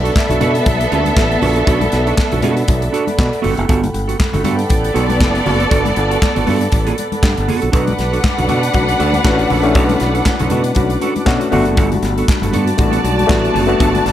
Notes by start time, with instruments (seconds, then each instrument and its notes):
Already playing: string section B3 A4 E5, tonewheel organ A4 D5 F#5 B5
0.03 clean electric guitar D4 F#4 A4, closed hi-hat
0.15 kick, snare, clap, high conga
0.29 fingered electric bass B1, clean electric guitar D4 F#4 A4, closed hi-hat, low conga
0.40 fingered electric bass B2, clean electric guitar D4 F#4 A4, closed hi-hat, muted conga, high conga, low conga
0.55 muted clean electric guitar stroke, closed hi-hat
0.66 fingered electric bass B1, kick, closed hi-hat, muted conga, high conga
0.80 muted clean electric guitar stroke, closed hi-hat
0.92 fingered electric bass D2, clean electric guitar D4 F#4 A4, closed hi-hat, muted conga
1.05 muted clean electric guitar stroke, closed hi-hat, high conga
1.17 fingered electric bass A1, kick, snare, clap, muted conga
1.30 muted clean electric guitar stroke, closed hi-hat
1.42 fingered electric bass A#1, clean electric guitar D4 F#4 A4, open hi-hat, muted conga, low conga
1.56 clean electric guitar D4 F#4 A4, closed hi-hat
1.67 fingered electric bass B1, clean electric guitar D4 F#4 A4, kick, closed hi-hat, muted conga
1.81 muted clean electric guitar stroke, closed hi-hat, high conga
1.92 fingered electric bass B1, muted clean electric guitar stroke, snare, closed hi-hat, muted conga
2.06 clean electric guitar D4 F#4 A4, closed hi-hat
2.17 muted clean electric guitar stroke, kick, snare, clap, muted conga, high conga
2.32 fingered electric bass B1, clean electric guitar D4 F#4 A4, closed hi-hat, low conga
2.42 fingered electric bass B2, clean electric guitar D4 F#4 A4, closed hi-hat, muted conga, high conga, low conga
2.57 muted clean electric guitar stroke, closed hi-hat
2.68 fingered electric bass B1, kick, closed hi-hat, muted conga, high conga
2.82 muted clean electric guitar stroke, closed hi-hat
2.92 clean electric guitar D4 F#4 A4, closed hi-hat
3.07 muted clean electric guitar stroke, closed hi-hat, high conga
3.18 fingered electric bass B2, muted clean electric guitar stroke, kick, snare, clap, muted conga
3.32 muted clean electric guitar stroke, closed hi-hat
3.42 fingered electric bass G1, clean electric guitar B3 F#4 A4, open hi-hat, muted conga, low conga
3.46 tonewheel organ G5
3.56 fingered electric bass F#1, clean electric guitar B3 F#4 A4, closed hi-hat
3.69 fingered electric bass G1, clean electric guitar B3 F#4 A4, kick, closed hi-hat
3.83 muted clean electric guitar stroke, closed hi-hat, high conga
3.94 fingered electric bass G1, muted clean electric guitar stroke, closed hi-hat
4.08 clean electric guitar B3 F#4 A4, closed hi-hat
4.19 muted clean electric guitar stroke, kick, snare, clap, muted conga, high conga
4.33 fingered electric bass G1, clean electric guitar B3 F#4 A4, closed hi-hat, low conga
4.44 fingered electric bass G2, clean electric guitar B3 F#4 A4, string section B3 A4 D5, closed hi-hat, high conga, low conga
4.58 muted clean electric guitar stroke, closed hi-hat
4.69 fingered electric bass A1, kick, closed hi-hat, high conga
4.83 muted clean electric guitar stroke, closed hi-hat
4.94 fingered electric bass B1, clean electric guitar B3 F#4 A4, closed hi-hat, muted conga
5.09 muted clean electric guitar stroke, closed hi-hat, high conga
5.20 fingered electric bass F#1, kick, snare, clap, muted conga
5.34 muted clean electric guitar stroke, closed hi-hat
5.46 fingered electric bass F#1, clean electric guitar B3 F#4 A4, tonewheel organ A5, open hi-hat, muted conga, low conga
5.60 clean electric guitar B3 F#4 A4, closed hi-hat
5.71 fingered electric bass G1, clean electric guitar B3 F#4 A4, kick, closed hi-hat
5.85 muted clean electric guitar stroke, closed hi-hat, high conga
5.96 fingered electric bass G1, muted clean electric guitar stroke, closed hi-hat, muted conga
6.10 clean electric guitar B3 F#4 A4, closed hi-hat
6.21 muted clean electric guitar stroke, kick, snare, clap, high conga
6.35 fingered electric bass G1, clean electric guitar B3 F#4 A4, closed hi-hat, low conga
6.46 fingered electric bass G2, clean electric guitar B3 F#4 A4, open hi-hat, muted conga, high conga, low conga
6.61 muted clean electric guitar stroke, closed hi-hat
6.72 fingered electric bass A1, muted clean electric guitar stroke, kick, closed hi-hat, high conga
6.87 clean electric guitar B3 F#4 A4, closed hi-hat
6.98 muted clean electric guitar stroke, closed hi-hat, muted conga
7.12 muted clean electric guitar stroke, closed hi-hat, high conga
7.23 fingered electric bass G2, muted clean electric guitar stroke, kick, snare, clap, muted conga
7.37 fingered electric bass G1, muted clean electric guitar stroke, closed hi-hat
7.48 clean electric guitar B3 F#4 A4, open hi-hat, muted conga, low conga
7.62 fingered electric bass A#1, clean electric guitar B3 F#4 A4, closed hi-hat
7.72 fingered electric bass B1, clean electric guitar D4 F#4 A4, string section D4 B4 F#5, tonewheel organ B4 D6, kick, closed hi-hat
7.87 muted clean electric guitar stroke, closed hi-hat, high conga
7.97 fingered electric bass B1, muted clean electric guitar stroke, snare, closed hi-hat
8.12 clean electric guitar D4 F#4 A4, closed hi-hat
8.23 muted clean electric guitar stroke, kick, snare, clap, high conga
8.37 fingered electric bass B1, clean electric guitar D4 F#4 A4, closed hi-hat, low conga
8.48 fingered electric bass B2, clean electric guitar D4 F#4 A4, closed hi-hat, muted conga, high conga, low conga
8.63 muted clean electric guitar stroke, closed hi-hat
8.73 fingered electric bass B1, reed electric piano A3 C#4 D4 F#4, kick, closed hi-hat, muted conga, high conga
8.88 muted clean electric guitar stroke, closed hi-hat
8.99 fingered electric bass D2, clean electric guitar D4 F#4 A4, closed hi-hat, muted conga
9.13 muted clean electric guitar stroke, closed hi-hat, high conga
9.24 fingered electric bass A1, reed electric piano A3 C#4 D4 F#4, muted clean electric guitar stroke, kick, snare, clap
9.39 muted clean electric guitar stroke, closed hi-hat
9.50 fingered electric bass A#1, clean electric guitar D4 F#4 A4, open hi-hat, muted conga, low conga
9.63 reed electric piano A3 C#4 D4 E4, clean electric guitar D4 F#4 A4, closed hi-hat
9.74 fingered electric bass B1, clean electric guitar D4 F#4 A4, kick, closed hi-hat, muted conga
9.89 muted clean electric guitar stroke, closed hi-hat, high conga
9.99 fingered electric bass B1, muted clean electric guitar stroke, snare, closed hi-hat
10.14 clean electric guitar D4 F#4 A4, closed hi-hat
10.26 kick, snare, clap, high conga
10.39 fingered electric bass B1, clean electric guitar D4 F#4 A4, closed hi-hat, low conga
10.50 fingered electric bass B2, clean electric guitar D4 F#4 A4, closed hi-hat, high conga, low conga
10.64 muted clean electric guitar stroke, closed hi-hat
10.75 fingered electric bass B1, reed electric piano A3 C#4 D4 F#4, kick, closed hi-hat, muted conga, high conga
10.90 muted clean electric guitar stroke, closed hi-hat
11.01 clean electric guitar D4 F#4 A4, closed hi-hat, muted conga
11.16 muted clean electric guitar stroke, closed hi-hat, high conga
11.26 fingered electric bass B2, reed electric piano A3 C#4 D4 F#4, kick, snare, clap
11.41 muted clean electric guitar stroke, closed hi-hat
11.51 fingered electric bass G1, tonewheel organ G3 B5, reed electric piano A3 B3 D4 F#4, clean electric guitar B3 F#4 A4, open hi-hat, muted conga, low conga
11.65 fingered electric bass F#1, clean electric guitar B3 F#4 A4, closed hi-hat
11.77 fingered electric bass G1, clean electric guitar B3 F#4 A4, kick, closed hi-hat, muted conga
11.92 muted clean electric guitar stroke, closed hi-hat, high conga
12.02 fingered electric bass G1, muted clean electric guitar stroke, snare, closed hi-hat, muted conga
12.18 clean electric guitar B3 F#4 A4, closed hi-hat
12.28 kick, snare, clap, muted conga, high conga
12.42 fingered electric bass G1, clean electric guitar B3 F#4 A4, closed hi-hat, low conga
12.53 fingered electric bass G2, clean electric guitar B3 F#4 A4, string section F#4 D5 A5, closed hi-hat, high conga, low conga
12.67 muted clean electric guitar stroke, closed hi-hat
12.78 fingered electric bass A1, reed electric piano A3 A#3 D4 F#4, muted clean electric guitar stroke, kick, closed hi-hat, muted conga, high conga
12.84 reed electric piano B3
12.92 clean electric guitar B3 F#4 A4, closed hi-hat
13.03 fingered electric bass B1, muted clean electric guitar stroke, closed hi-hat, muted conga
13.18 muted clean electric guitar stroke, closed hi-hat, high conga
13.27 fingered electric bass A1, reed electric piano A3 B3 D4 F#4, kick, snare, clap
13.42 muted clean electric guitar stroke, closed hi-hat
13.54 fingered electric bass F#1, clean electric guitar B3 F#4 A4, open hi-hat, muted conga, low conga
13.67 reed electric piano A3 B3 D4 F#4, clean electric guitar B3 F#4 A4, closed hi-hat
13.79 fingered electric bass G1, clean electric guitar B3 F#4 A4, kick, closed hi-hat, muted conga
13.94 muted clean electric guitar stroke, closed hi-hat, high conga
14.05 fingered electric bass G1, muted clean electric guitar stroke, snare, closed hi-hat